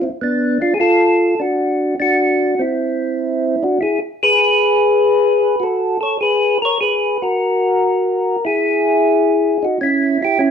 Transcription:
0, 0, Header, 1, 2, 480
1, 0, Start_track
1, 0, Tempo, 600000
1, 1104, Time_signature, 4, 2, 24, 8
1, 8406, End_track
2, 0, Start_track
2, 0, Title_t, "Tonewheel organ"
2, 0, Program_c, 0, 16
2, 12, Note_on_c, 0, 60, 60
2, 26, Note_on_c, 0, 64, 75
2, 75, Note_off_c, 0, 60, 0
2, 86, Note_off_c, 0, 64, 0
2, 172, Note_on_c, 0, 59, 65
2, 187, Note_on_c, 0, 62, 83
2, 466, Note_off_c, 0, 59, 0
2, 481, Note_off_c, 0, 62, 0
2, 490, Note_on_c, 0, 62, 65
2, 495, Note_on_c, 0, 65, 92
2, 589, Note_off_c, 0, 62, 0
2, 592, Note_off_c, 0, 65, 0
2, 593, Note_on_c, 0, 68, 69
2, 626, Note_off_c, 0, 68, 0
2, 639, Note_on_c, 0, 65, 79
2, 647, Note_on_c, 0, 69, 97
2, 1080, Note_off_c, 0, 65, 0
2, 1116, Note_on_c, 0, 62, 72
2, 1130, Note_off_c, 0, 69, 0
2, 1133, Note_on_c, 0, 66, 94
2, 1559, Note_off_c, 0, 62, 0
2, 1567, Note_off_c, 0, 66, 0
2, 1598, Note_on_c, 0, 62, 64
2, 1614, Note_on_c, 0, 66, 86
2, 2039, Note_off_c, 0, 62, 0
2, 2074, Note_on_c, 0, 60, 67
2, 2090, Note_on_c, 0, 64, 88
2, 2093, Note_off_c, 0, 66, 0
2, 2848, Note_off_c, 0, 60, 0
2, 2901, Note_on_c, 0, 62, 68
2, 2910, Note_on_c, 0, 66, 85
2, 2912, Note_off_c, 0, 64, 0
2, 3028, Note_off_c, 0, 62, 0
2, 3046, Note_off_c, 0, 66, 0
2, 3046, Note_on_c, 0, 64, 72
2, 3060, Note_on_c, 0, 68, 90
2, 3190, Note_off_c, 0, 64, 0
2, 3201, Note_off_c, 0, 68, 0
2, 3383, Note_on_c, 0, 68, 83
2, 3388, Note_on_c, 0, 71, 126
2, 4446, Note_off_c, 0, 68, 0
2, 4479, Note_on_c, 0, 66, 74
2, 4505, Note_on_c, 0, 69, 93
2, 4514, Note_off_c, 0, 71, 0
2, 4779, Note_off_c, 0, 66, 0
2, 4793, Note_off_c, 0, 69, 0
2, 4806, Note_on_c, 0, 69, 67
2, 4823, Note_on_c, 0, 73, 96
2, 4940, Note_off_c, 0, 69, 0
2, 4949, Note_off_c, 0, 73, 0
2, 4966, Note_on_c, 0, 68, 74
2, 4980, Note_on_c, 0, 71, 91
2, 5263, Note_off_c, 0, 68, 0
2, 5270, Note_off_c, 0, 71, 0
2, 5297, Note_on_c, 0, 70, 82
2, 5321, Note_on_c, 0, 73, 101
2, 5425, Note_off_c, 0, 70, 0
2, 5438, Note_off_c, 0, 73, 0
2, 5445, Note_on_c, 0, 68, 78
2, 5459, Note_on_c, 0, 71, 90
2, 5742, Note_off_c, 0, 68, 0
2, 5777, Note_on_c, 0, 66, 76
2, 5780, Note_off_c, 0, 71, 0
2, 5786, Note_on_c, 0, 70, 87
2, 6692, Note_off_c, 0, 66, 0
2, 6757, Note_off_c, 0, 70, 0
2, 6759, Note_on_c, 0, 64, 70
2, 6771, Note_on_c, 0, 68, 107
2, 7662, Note_off_c, 0, 64, 0
2, 7700, Note_on_c, 0, 63, 62
2, 7716, Note_on_c, 0, 66, 85
2, 7728, Note_off_c, 0, 68, 0
2, 7825, Note_off_c, 0, 63, 0
2, 7834, Note_off_c, 0, 66, 0
2, 7849, Note_on_c, 0, 61, 65
2, 7866, Note_on_c, 0, 64, 90
2, 8142, Note_off_c, 0, 61, 0
2, 8171, Note_off_c, 0, 64, 0
2, 8180, Note_on_c, 0, 64, 70
2, 8197, Note_on_c, 0, 67, 96
2, 8305, Note_off_c, 0, 64, 0
2, 8312, Note_on_c, 0, 61, 72
2, 8323, Note_on_c, 0, 64, 96
2, 8326, Note_off_c, 0, 67, 0
2, 8406, Note_off_c, 0, 61, 0
2, 8406, Note_off_c, 0, 64, 0
2, 8406, End_track
0, 0, End_of_file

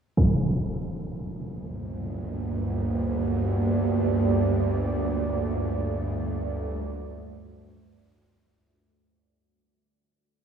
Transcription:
0, 0, Header, 1, 4, 480
1, 0, Start_track
1, 0, Key_signature, -2, "minor"
1, 0, Tempo, 500000
1, 10027, End_track
2, 0, Start_track
2, 0, Title_t, "Ambient pad"
2, 0, Program_c, 0, 92
2, 177, Note_on_c, 0, 58, 65
2, 1807, Note_on_c, 0, 67, 71
2, 1968, Note_on_c, 0, 74, 70
2, 4132, Note_on_c, 0, 57, 72
2, 4142, Note_off_c, 0, 58, 0
2, 4144, Note_off_c, 0, 67, 0
2, 5900, Note_on_c, 0, 66, 62
2, 8086, Note_off_c, 0, 66, 0
2, 8087, Note_off_c, 0, 57, 0
2, 8088, Note_off_c, 0, 74, 0
2, 10027, End_track
3, 0, Start_track
3, 0, Title_t, "Synth drone"
3, 0, Program_c, 1, 95
3, 183, Note_on_c, 1, 38, 62
3, 189, Note_on_c, 1, 31, 70
3, 8193, Note_off_c, 1, 38, 0
3, 8196, Note_off_c, 1, 31, 0
3, 10027, End_track
4, 0, Start_track
4, 0, Title_t, "Impact"
4, 0, Program_c, 2, 103
4, 167, Note_on_c, 2, 60, 61
4, 372, Note_off_c, 2, 60, 0
4, 10027, End_track
0, 0, End_of_file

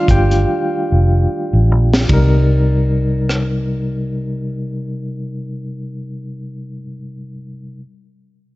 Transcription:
0, 0, Header, 1, 4, 480
1, 0, Start_track
1, 0, Tempo, 800000
1, 1257, Time_signature, 4, 2, 24, 8
1, 5134, End_track
2, 0, Start_track
2, 0, Title_t, "Tine electric piano"
2, 0, Program_c, 0, 4
2, 0, Control_c, 0, 64, 127
2, 0, Note_on_c, 0, 51, 49
2, 0, Note_on_c, 0, 55, 47
2, 0, Note_on_c, 0, 57, 43
2, 0, Note_on_c, 0, 62, 58
2, 0, Note_on_c, 0, 65, 65
2, 0, Note_on_c, 0, 74, 75
2, 0, Note_on_c, 0, 77, 82
2, 64, Note_on_c, 0, 79, 71
2, 68, Note_off_c, 0, 77, 0
2, 72, Note_on_c, 0, 67, 58
2, 757, Note_off_c, 0, 79, 0
2, 760, Note_off_c, 0, 67, 0
2, 997, Note_off_c, 0, 51, 0
2, 999, Note_off_c, 0, 55, 0
2, 999, Note_off_c, 0, 57, 0
2, 1245, Note_on_c, 0, 48, 62
2, 1258, Note_on_c, 0, 55, 57
2, 1266, Control_c, 0, 64, 0
2, 1267, Note_off_c, 0, 62, 0
2, 1268, Note_off_c, 0, 65, 0
2, 1270, Note_on_c, 0, 63, 60
2, 1272, Note_off_c, 0, 74, 0
2, 1281, Note_on_c, 0, 70, 67
2, 1359, Control_c, 0, 64, 127
2, 4047, Note_off_c, 0, 48, 0
2, 4054, Note_off_c, 0, 55, 0
2, 4059, Note_off_c, 0, 63, 0
2, 4065, Note_off_c, 0, 70, 0
2, 4684, Control_c, 0, 64, 0
2, 5134, End_track
3, 0, Start_track
3, 0, Title_t, "Fingered electric bass"
3, 0, Program_c, 1, 33
3, 58, Note_on_c, 1, 31, 77
3, 266, Note_off_c, 1, 31, 0
3, 552, Note_on_c, 1, 29, 69
3, 754, Note_off_c, 1, 29, 0
3, 920, Note_on_c, 1, 33, 75
3, 1029, Note_off_c, 1, 33, 0
3, 1029, Note_on_c, 1, 34, 80
3, 1232, Note_off_c, 1, 34, 0
3, 1264, Note_on_c, 1, 36, 74
3, 4056, Note_off_c, 1, 36, 0
3, 5134, End_track
4, 0, Start_track
4, 0, Title_t, "Drums"
4, 50, Note_on_c, 9, 36, 74
4, 52, Note_on_c, 9, 42, 54
4, 110, Note_off_c, 9, 36, 0
4, 112, Note_off_c, 9, 42, 0
4, 188, Note_on_c, 9, 42, 35
4, 248, Note_off_c, 9, 42, 0
4, 1161, Note_on_c, 9, 38, 70
4, 1221, Note_off_c, 9, 38, 0
4, 1255, Note_on_c, 9, 51, 65
4, 1256, Note_on_c, 9, 36, 78
4, 1315, Note_off_c, 9, 51, 0
4, 1316, Note_off_c, 9, 36, 0
4, 1977, Note_on_c, 9, 37, 45
4, 2037, Note_off_c, 9, 37, 0
4, 5134, End_track
0, 0, End_of_file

